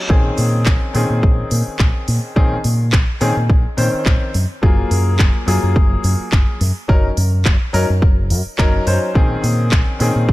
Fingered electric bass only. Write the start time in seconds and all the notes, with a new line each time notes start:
0.10 A#1
0.38 A#2
0.66 A#1
0.95 A#2
1.10 A#2
1.23 A#1
1.51 A#2
1.67 muted fingered electric bass stroke
1.80 A#1
2.08 A#2
2.36 A#1
2.65 A#2
2.93 A#1
3.21 A#2
3.37 A#2
3.50 A#1
3.65 muted fingered electric bass stroke
3.78 A#2
3.94 muted fingered electric bass stroke
4.06 A#1
4.35 F#2
4.63 F#1
4.91 F#2
5.19 F#1
5.48 F#2
5.63 F#2
5.76 F#1
6.04 F#2
6.20 muted fingered electric bass stroke
6.32 F#1
6.61 F#2
6.89 F#1
7.17 F#2
7.46 F#1
7.74 F#2
7.90 F#2
8.02 F#1
8.31 F#2
8.46 muted fingered electric bass stroke
8.59 F#1
8.87 F#2
9.15 A#1
9.44 A#2
9.72 A#1
10.00 A#2
10.16 A#2
10.29 A#1